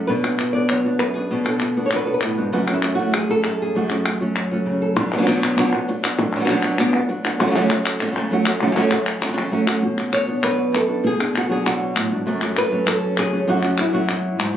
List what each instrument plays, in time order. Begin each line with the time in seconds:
Already playing: nylon-string guitar F#4
0.07 nylon-string guitar B2 F#3 B3 D4 F#4 B4
0.24 nylon-string guitar B3 D4 F#4, clap
0.39 muted nylon-string guitar stroke, clap
0.53 nylon-string guitar B3 D4 F#4 D5
0.69 nylon-string guitar B2 F#3 B3 D4 F#4 C#5, clap
0.85 nylon-string guitar B3 D4 F#4
0.99 nylon-string guitar F#2 B4, muted nylon-string guitar stroke, clap
1.14 nylon-string guitar B3 D4 F#4 G#4
1.31 nylon-string guitar B2 F#3 B3 D4 F#4
1.44 nylon-string guitar B3 D4 F#4 A4, clap
1.60 nylon-string guitar B4, muted nylon-string guitar stroke, clap
1.77 nylon-string guitar B3 D4 F#4
1.86 nylon-string guitar C#5
1.91 nylon-string guitar B2 F#3 B3 D4 F#4, clap
1.96 nylon-string guitar B4
2.05 nylon-string guitar B3 D4 F#4 A4
2.14 nylon-string guitar B4
2.21 nylon-string guitar A2, muted nylon-string guitar stroke, clap
2.37 nylon-string guitar G#2 B3 D4 F#4
2.52 nylon-string guitar F#2 C#3 F#3 A3 C#4 F#4
2.67 nylon-string guitar F#3 A3 C#4 F#4, clap
2.74 nylon-string guitar E4
2.83 nylon-string guitar F#3 A3 C#4 F#4, clap
2.95 nylon-string guitar F#4
2.99 nylon-string guitar F#3 A3 C#4
3.14 nylon-string guitar G#4, muted nylon-string guitar stroke, clap
3.29 nylon-string guitar F#3 A3 C#4 F#4 A4
3.44 nylon-string guitar F#2 A4, clap
3.62 nylon-string guitar G#4
3.75 nylon-string guitar F#2 C#3 F#3 A3 C#4 F#4
3.90 nylon-string guitar F#3 A3 C#4 F#4, clap
4.05 nylon-string guitar F#3 A3 C#4 F#4, clap
4.20 nylon-string guitar F#3 A3 C#4 F#4
4.36 muted nylon-string guitar stroke, clap
4.51 nylon-string guitar F#3 A3 C#4 F#4
4.66 nylon-string guitar C#3
4.82 nylon-string guitar A4
4.96 nylon-string guitar B2 F#3 B3 D4 F#4, muted nylon-string guitar stroke
5.13 nylon-string guitar F#3 B3 D4 F#4
5.18 nylon-string guitar F#3 B3 D4 F#4
5.22 nylon-string guitar F#3 B3 D4 F#4
5.27 nylon-string guitar B2 F#3 B3 D4 F#4, clap
5.33 nylon-string guitar F#3 B3 D4 F#4
5.38 nylon-string guitar F#3 B3 D4 F#4
5.42 nylon-string guitar B2 F#3 B3 D4 F#4, clap
5.57 nylon-string guitar B2 F#3 B3 D4 F#4, muted nylon-string guitar stroke, clap
5.73 nylon-string guitar B3 D4 F#4
5.87 nylon-string guitar F#3 B3 D4 F#4, muted nylon-string guitar stroke
6.03 nylon-string guitar B3 D4 F#4, clap
6.18 nylon-string guitar B2 F#3 B3 D4 F#4, muted nylon-string guitar stroke
6.36 nylon-string guitar F#3 B3 D4 F#4
6.40 nylon-string guitar F#3 B3 D4 F#4
6.44 nylon-string guitar F#3 B3 D4 F#4, clap
6.48 nylon-string guitar B2 F#3 B3 D4 F#4
6.55 nylon-string guitar F#3 B3 D4 F#4
6.59 nylon-string guitar F#3 B3 D4 F#4, clap
6.64 nylon-string guitar B2 F#3 B3 D4 F#4
6.78 nylon-string guitar B2 F#3 B3 D4 F#4, muted nylon-string guitar stroke, clap
6.93 nylon-string guitar B3 D4 F#4
7.09 nylon-string guitar F#3 B3 D4 F#4, muted nylon-string guitar stroke
7.25 nylon-string guitar B3 D4 F#4, clap
7.39 nylon-string guitar F#2 C#3 F#3 A3 C#4 F#4
7.46 nylon-string guitar C#3 F#3 A3 C#4 F#4
7.50 nylon-string guitar C#3 F#3 A3 C#4 F#4
7.55 nylon-string guitar F#2 C#3 F#3 A3 C#4 F#4
7.70 nylon-string guitar F#3 A3 C#4 F#4, clap
7.86 clap
8.01 muted nylon-string guitar stroke, clap
8.07 nylon-string guitar C#3 F#3 A3 C#4 F#4
8.11 nylon-string guitar C#3 F#3 A3 C#4 F#4
8.16 nylon-string guitar F#2 C#3 F#3 A3 C#4 F#4
8.31 nylon-string guitar F#3 A3 C#4 F#4
8.46 nylon-string guitar F#3 A3 C#4 F#4, clap
8.61 nylon-string guitar F#2 C#3 F#3 A3 C#4 F#4
8.67 nylon-string guitar C#3 F#3 A3 C#4 F#4
8.72 nylon-string guitar C#3 F#3 A3 C#4 F#4
8.76 nylon-string guitar F#2 C#3 F#3 A3 C#4 F#4
8.91 nylon-string guitar F#3 A3 C#4 F#4, clap
9.06 clap
9.22 nylon-string guitar C#3 C#4 F#4, muted nylon-string guitar stroke, clap
9.28 nylon-string guitar C#3 F#3 A3 C#4 F#4
9.32 nylon-string guitar C#3 F#3 A3 C#4 F#4
9.37 nylon-string guitar F#2 C#3 F#3 A3 C#4 F#4
9.51 nylon-string guitar F#3 A3 C#4 F#4
9.67 nylon-string guitar F#3 A3 C#4 F#4, clap
9.81 nylon-string guitar B2, muted nylon-string guitar stroke
9.97 nylon-string guitar F#4, clap
10.13 nylon-string guitar C#5, clap
10.27 nylon-string guitar B3 D4 F#4
10.43 nylon-string guitar B2 F#3 B3 D4 F#4 B4, clap
10.58 nylon-string guitar F#4
10.72 nylon-string guitar F#2 A4, muted nylon-string guitar stroke, clap
10.89 nylon-string guitar B3 D4 F#4
11.04 nylon-string guitar B2 G#4, muted nylon-string guitar stroke
11.20 nylon-string guitar D4, clap
11.36 nylon-string guitar F#4, clap
11.49 nylon-string guitar F#3 B3 D4 F#4 G#4
11.65 nylon-string guitar B2 F#3 B3 D4 F#4, clap
11.96 nylon-string guitar A2, muted nylon-string guitar stroke, clap
12.11 nylon-string guitar G#2 B3 D4 F#4
12.26 nylon-string guitar F#2 C#3 F#3 A3 C#4 F#4
12.41 nylon-string guitar F#3 A3 C#4 F#4, clap
12.57 nylon-string guitar F#3 A3 C#4 F#4 B4, clap
12.72 nylon-string guitar F#3 A3 C#4 F#4
12.87 nylon-string guitar A4, muted nylon-string guitar stroke, clap
13.03 nylon-string guitar C#4
13.18 nylon-string guitar C#3 G#4, clap
13.32 nylon-string guitar F#3 A3 C#4 F#4
13.47 nylon-string guitar F#2 C#3 F#3 A3 C#4 F#4
13.63 nylon-string guitar F#3 A3 C#4 F#4, clap
13.78 nylon-string guitar F#3 A3 C#4 E4 F#4, clap
13.93 nylon-string guitar F#3 A3 C#4 F#4
14.08 nylon-string guitar E4, muted nylon-string guitar stroke, clap
14.39 nylon-string guitar G#2, clap